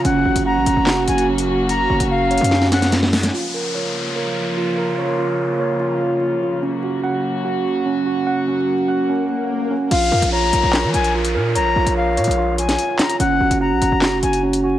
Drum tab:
CC |------------------------------------------------|------------------------------------------------|------------------------------------------------|------------------------------------------------|
HH |x--------x--------x-----------x--x-----x--------|x--------x--------x-x-x-------x--x--x-----o--x--|------------------------------------------------|------------------------------------------------|
CP |------------------------x-----------------------|------------------------------------------------|------------------------------------------------|------------------------------------------------|
SD |------------------------o-----------------------|------------------------o--o--o--o--o--o--o--o--|------------------------------------------------|------------------------------------------------|

CC |------------------------------------------------|------------------------------------------------|x-----------------------------------------------|------------------------------------------------|
HH |------------------------------------------------|------------------------------------------------|x--------x--------x-----------x--x-----x--------|x--------x--------x-x-x-------x--x--x-----x--x--|
CP |------------------------------------------------|------------------------------------------------|------------------------x-----------------------|------------------------------------------x-----|
SD |------------------------------------------------|------------------------------------------------|------------------------o-----------------------|---------------------------------o--------o-----|

CC |------------------------------------------------|
HH |x--------x--------x-----------x--x-----x--------|
CP |------------------------x-----------------------|
SD |------------------------o-----------------------|